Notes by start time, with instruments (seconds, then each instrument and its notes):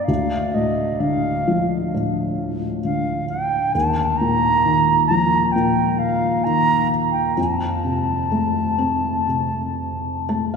Already playing: felt piano D3 A#3
0.04 felt piano D2, flute F5
0.54 felt piano A2, flute D#5
1.00 felt piano D3, flute F5
1.48 felt piano F3
1.94 felt piano A2
2.85 felt piano D3, flute F5
3.29 flute G5
3.73 felt piano D#2, flute A5
4.18 felt piano A#2, flute A#5
4.65 felt piano D#3
5.07 felt piano F3, flute A#5
5.52 felt piano A#2, flute G5
5.99 flute F5
6.44 felt piano D#3, flute A#5
7.12 flute G5
7.35 felt piano F2, flute A5
7.84 felt piano C3
8.32 felt piano A3
8.78 felt piano C4
9.27 felt piano C3
10.29 felt piano A3 A5